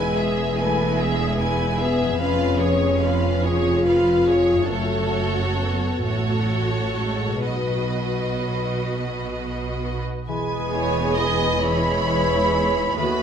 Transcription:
Already playing: E1 E2 G#3 B3 E4 B4 G#5
0.16 G#4 E5
0.58 A3 E4 B4 G#5
0.98 G#3 G#4 E5
1.39 E4 B4 G#5
1.79 B3 G#4 E5
2.01 F2
2.05 C#4
2.10 G#4
2.15 B4
2.20 F1 F2 C#4 F4 B4 F5
2.60 G#4 C#5
3.02 F4 B4 F5
3.43 F4 G#4 C#5
3.84 F4 B4 F5
4.27 G#4 C#5
4.53 F#2
4.58 C#4
4.62 F#4
4.66 A3 F#4 A4
4.71 F#1 F#2 C#5
5.59 B3
6.02 A1 A2 A3 F#4 A4 C#5
6.96 G#3
7.27 B2
7.31 D#4
7.36 F#4
7.41 B2 F#4 B4
7.46 B1 F#3 D#5
10.27 E1 E2 E3 G#3 B3 E4 G#4 G#5 B5
10.72 G#3 E4 C#5 B5
11.17 G#3 E4 B4 D#5 B5
11.61 G#3 E4 C#5 E5 B5
12.07 G#3 E4 B4 B5
12.52 G#3 E4 G#4 B5
12.97 D#2 D#3 A3 B3 F#4 B4 B5

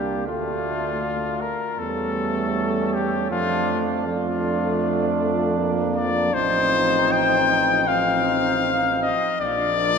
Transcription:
Already playing: C2 G3 A#3 D4 G4
0.27 D2 A3 D4 F4
1.41 A#4
1.79 E2 G3 A3 C#4 A4
2.93 G4
3.31 F2 F3 A3 D4 F4
4.07 F3 A3 D4 F4
5.58 A#3
5.96 D5
6.33 A1 F3 C4 D#4 C5
7.12 G5
7.88 F3 C4 D#4 F5
9.03 D#5
9.41 A#1 F3 A#3 D4 D5

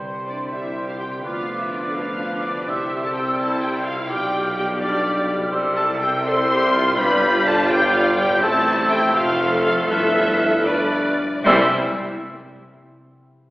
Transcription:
Already playing: C2 C3 G3 C4 G4 C5 G5 C6
0.04 C4 C5
0.27 D4 D5
0.51 G3 E4 G4 C5 E5 C6
0.88 F4 F5
1.00 G4 G5
1.07 D3
1.11 B3
1.15 F4
1.20 B4
1.24 D2 D3 F3 B3 F4 B4 F5 D6
1.60 E4 E5
1.72 D4 D5
1.96 F3 D4 F4 B4 F5 D6
2.44 D4 D5
2.51 C3
2.55 E4
2.60 G4
2.64 C2 C3 E4 C5 E5 E6
2.68 C2 G3 C4 G4 C5
3.03 A4 A5
3.15 G4 G5
3.38 E4 A4 A5
3.62 G4 G5
3.85 F4 F5
3.92 B2
3.96 F4
4.01 G4
4.05 F4 D5
4.09 B1 B2 G3 G4 G5 F6
4.57 G4 G5
4.80 G3 D4 D5 F6
5.34 C3
5.39 E4
5.43 G4
5.48 C3 C5 E6
5.52 C2 G3 E4
5.76 A4 A5
6.01 G4 G5
6.26 G3 A4 C5 C6 E6
6.51 G4
6.63 F6
6.75 F4
6.81 G2
6.85 D4
6.90 G4
6.94 G1 G2 D5 G6
6.98 G1 G3 D4 B4 B5
7.46 A4 A5
7.69 G3 G4 D5 G5 G6
7.93 F4 F5
8.17 G4 G5
8.24 A2
8.29 C4
8.33 E4
8.38 A1 A4 C5 A5
8.42 A1 A2 E3 A3 C4 E4 A4 A5 E6
8.89 G4 G5
8.97 F2
9.02 C4
9.06 F4
9.11 A4 F5
9.15 F1 F2 F3 A3 F4 A4 C5 F5 F6
9.64 F4 F5
9.72 G2
9.77 B3
9.81 F4
9.86 E4 A4 E5
9.90 G1 G2 A3 B4 E5 F6
10.65 A3 D4 B4 D5 F6
11.40 C3 C4
11.45 C2 C3 E3 G3 C4 E4 C5 E5 E6
11.52 E5

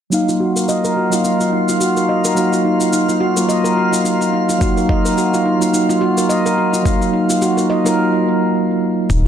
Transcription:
0.10 F#3 A#3 D#4 F4 F5, cabasa
0.14 F5
0.29 F4, cabasa
0.40 F#4
0.56 A#4, cabasa
0.69 D#5, cabasa
0.85 A#4, cabasa
0.96 F#4
1.10 F#3 A#3 D#4 F4, cabasa
1.14 F5
1.24 D#4, cabasa
1.40 F4, cabasa
1.53 D#4
1.69 F4, cabasa
1.81 F#4, cabasa
1.97 A#4, cabasa
2.09 D#5
2.25 A#4, cabasa
2.35 F#3 A#3 D#4 F#4 F5, cabasa
2.52 F4, cabasa
2.65 D#4
2.81 F4, cabasa
2.93 D#4, cabasa
3.09 F4, cabasa
3.20 F#4
3.36 F#3 A#3 D#4 F4 A#4, cabasa
3.49 D#5, cabasa
3.64 A#4, cabasa
3.77 F#4
3.93 F4, cabasa
4.05 D#4, cabasa
4.21 F4, cabasa
4.33 D#4
4.49 F4, cabasa
4.59 F#3 A#3 D#4 F#4, kick, cabasa
4.63 F5
4.77 A#4, cabasa
4.89 D#5, kick
5.05 A#4, cabasa
5.18 F#4, cabasa
5.34 F4, cabasa
5.46 D#4
5.59 F#3 A#3 D#4 F4, cabasa
5.63 F5
5.73 D#4, cabasa
5.89 F4, cabasa
6.01 F#4
6.18 A#4, cabasa
6.29 D#5, cabasa
6.46 A#4, cabasa
6.58 F#4
6.73 F4, cabasa
6.83 F#3 A#3 D#4, kick, cabasa
6.87 F5
7.01 F4, cabasa
7.13 D#4
7.30 F4, cabasa
7.42 F#4, cabasa
7.57 A#4, cabasa
7.70 D#5
7.84 F#3 A#3 D#4 F4 A#4, cabasa
9.09 D#1 D#4 D#5, kick, cabasa

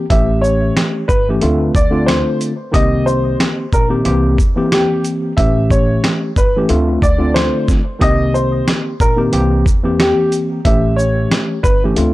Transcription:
0.10 A1 E3 A3 C#4 G4 E5, kick, closed hi-hat
0.41 C#5, shaker
0.77 cross-stick, snare, closed hi-hat
1.08 G1 B4, kick, shaker
1.29 E3 A3 C#4 G4
1.41 D2 D3 A3 C4 F4, closed hi-hat
1.75 D2 D5, kick, shaker
1.91 D3 A3 C4 F4
2.06 C5, cross-stick, snare, closed hi-hat
2.41 closed hi-hat, shaker
2.72 C2 D#3 A#3 C4 G4 D#5, kick, closed hi-hat
3.06 C5, shaker
3.40 cross-stick, snare, closed hi-hat
3.73 A#1 A#4, kick, shaker
3.89 D#3 A#3 C4 G4
4.04 C2 E3 A#3 C4 G4, closed hi-hat
4.38 E2, kick, shaker
4.56 E3 A#3 C4 G4
4.72 G4, cross-stick, snare, closed hi-hat
5.04 closed hi-hat, shaker
5.37 A1 E3 A3 C#4 G4 E5, kick, closed hi-hat
5.70 C#5, kick, shaker
6.04 cross-stick, snare, closed hi-hat
6.36 G1 B4, kick, shaker
6.56 E3 A3 C#4 G4
6.69 D2 D3 A3 C4 F4, closed hi-hat
7.02 D2 D5, kick, shaker
7.18 D3 A3 C4 F4
7.34 C5, cross-stick, snare, closed hi-hat
7.68 kick, snare, shaker
7.99 C2 D#3 A#3 C4 G4 D#5, kick, closed hi-hat
8.34 C5, shaker
8.68 cross-stick, snare, closed hi-hat
9.00 A#1 A#4, kick, shaker
9.16 D#3 A#3 C4 G4
9.32 C2 E3 A#3 C4 G4, closed hi-hat
9.66 E2, kick, shaker
9.83 E3 A#3 C4 G4
10.00 G4, cross-stick, snare, closed hi-hat
10.32 closed hi-hat, shaker
10.65 A1 E3 A3 C#4 G4 E5, kick, closed hi-hat
10.96 C#5, shaker
11.31 cross-stick, snare, closed hi-hat
11.63 G1 B4, kick, shaker
11.84 E3 A3 C#4 G4
11.96 D2 D3 A3 C4 F4, closed hi-hat

